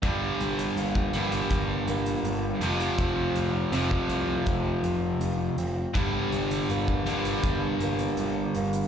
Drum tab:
HH |x-xxx-xxx-xxx-xx|x-x-x-x-x-x-x-x-|x-xxx-xxx-xxx-xx|
BD |o----o--o-------|o----o--o-------|o----o--o-------|